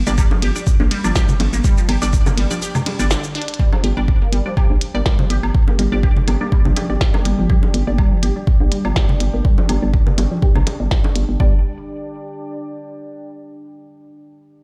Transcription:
0.07 fm bass G1, synth stab G3 D4 D5, synth pluck A#3, shaker
0.18 synth pluck G3, kick, high woodblock, shaker
0.31 synth pluck F3, low bongo
0.42 fm bass G1, synth pluck G4, closed hi-hat, ride
0.56 synth stab G3 D4 D5, shaker
0.67 kick, shaker
0.80 fm bass A#1, synth pluck A#3, low bongo
0.91 synth pluck G3, closed hi-hat, ride
1.04 fm bass G1, synth pluck F3, synth stab G3 D4 D5, high woodblock, shaker
1.15 synth pluck G4, kick, snare, shaker
1.29 low conga, shaker
1.40 fm bass G1, closed hi-hat, ride, low bongo
1.53 fm bass G1, synth pluck A#3, shaker
1.64 synth pluck G3, kick, shaker
1.78 synth pluck F3, shaker
1.89 fm bass G1, synth pluck G4, closed hi-hat, ride, high woodblock
2.02 fm bass G1, synth stab G3 D4 D5, shaker
2.13 kick, shaker
2.26 synth pluck A#3, low bongo, low conga, shaker
2.37 fm bass G1, synth pluck G3, closed hi-hat, ride
2.51 synth pluck F3, synth stab G3 D4 D5, shaker
2.62 synth pluck G4, shaker
2.75 low conga, high woodblock, shaker
2.86 synth pluck G3, closed hi-hat, ride, low bongo
2.99 fm bass G1, synth stab G3 D4 D5, synth pluck G3, shaker
3.11 synth pluck D3, snare, shaker
3.24 shaker
3.35 synth pluck D4, closed hi-hat
3.42 closed hi-hat
3.48 closed hi-hat
3.54 closed hi-hat
3.59 synth pluck G3, ambient pad D4, synth texture G4, kick
3.73 synth pluck F3, ambient pad D5, low bongo, high woodblock
3.80 fm bass G1, ambient pad G4, synth pluck G4, closed hi-hat
3.97 fm bass G1, synth stab G3 D4 D5
4.05 ambient pad G5, kick
4.22 synth pluck A#3
4.32 fm bass G1, synth pluck G3, closed hi-hat
4.46 synth pluck F3, synth stab G3 D4 D5
4.57 synth pluck G4, kick, high woodblock
4.70 fm bass A#1
4.81 closed hi-hat
4.94 fm bass G1, synth stab G3 D4 D5, synth pluck A#3
5.06 synth pluck G3, kick, snare
5.19 synth pluck F3, low conga
5.30 fm bass G1, synth pluck G4, closed hi-hat
5.43 fm bass G1, high woodblock
5.55 kick
5.68 synth pluck A#3, low bongo
5.79 fm bass G1, synth pluck G3, closed hi-hat
5.92 fm bass G1, synth pluck F3, synth stab G3 D4 D5
6.03 synth pluck G4, kick
6.17 low conga
6.28 fm bass G1, closed hi-hat, low bongo, high woodblock
6.41 synth stab G3 D4 D5, synth pluck A#3
6.52 synth pluck G3, kick
6.65 fm bass A#1, synth pluck F3, low conga
6.77 synth pluck G4, closed hi-hat, low bongo
6.90 fm bass G1, synth stab G3 D4 D5
7.01 kick, snare
7.14 synth pluck A#3, low bongo, high woodblock
7.25 fm bass G1, synth pluck G3, closed hi-hat
7.39 fm bass G1, synth pluck F3
7.50 synth pluck G4, kick
7.63 low bongo
7.74 fm bass G1, closed hi-hat
7.87 fm bass G1, synth stab G3 D4 D5, synth pluck A#3
7.98 synth pluck G3, kick, high woodblock
8.12 synth pluck F3
8.23 fm bass G1, synth pluck G4, closed hi-hat
8.36 synth stab G3 D4 D5
8.47 kick
8.60 fm bass A#1, synth pluck A#3
8.72 synth pluck G3, closed hi-hat
8.85 fm bass G1, synth pluck F3, synth stab G3 D4 D5, high woodblock
8.96 synth pluck G4, kick, snare
9.09 low conga
9.20 fm bass G1, closed hi-hat
9.34 fm bass G1, synth pluck A#3
9.45 synth pluck G3, kick
9.58 synth pluck F3, low bongo
9.69 fm bass G1, synth pluck G4, closed hi-hat, high woodblock
9.82 fm bass G1, synth stab G3 D4 D5
9.94 kick
10.07 synth pluck A#3, low conga
10.18 fm bass G1, synth pluck G3, closed hi-hat, low bongo
10.31 synth pluck F3, synth stab G3 D4 D5
10.42 synth pluck G4, kick
10.56 fm bass A#1, low conga, high woodblock
10.67 synth pluck G3, closed hi-hat, low bongo
10.80 fm bass G1, synth pluck G3, synth stab G3 D4 D5
10.91 synth pluck G3, kick, snare
11.04 low bongo
11.15 fm bass G1, synth pluck G3, closed hi-hat
11.29 fm bass G1
11.40 fm bass G1, synth pluck G3, synth stab G3 D4 D5, ambient pad D4, kick
11.48 ambient pad G4
11.55 ambient pad D5
11.62 ambient pad G5

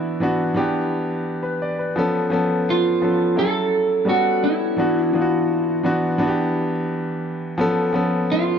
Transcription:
Already playing: grand piano E3 B3 D4 E4 F#4, clean electric guitar E4
0.20 grand piano E3 B3 D4 F#4
0.54 grand piano E3 B3 D4 G4
1.43 grand piano B4
1.62 grand piano D5
1.79 grand piano B4
1.96 grand piano F3 B3 C#4 A4
2.30 grand piano F3 B3 C#4 A4
2.70 clean electric guitar F4
3.02 grand piano F3 B3 C#4 A4
3.36 grand piano F#3 C#4 E4 G#4, clean electric guitar A4
3.45 grand piano A4
4.05 grand piano G3 B3 C#4 F#4 A4
4.09 clean electric guitar F#4
4.44 clean electric guitar E4
4.77 grand piano E3 B3 D4 F#4
5.13 grand piano E3 B3 D4 F4
5.21 grand piano F#4
5.83 grand piano E3 B3 D4 F#4
6.18 grand piano E3 B3 D4 F#4
6.27 grand piano G4
7.58 grand piano F3 B3 C#4 A4
7.93 grand piano F3 B3 C#4 A4
8.32 clean electric guitar F4

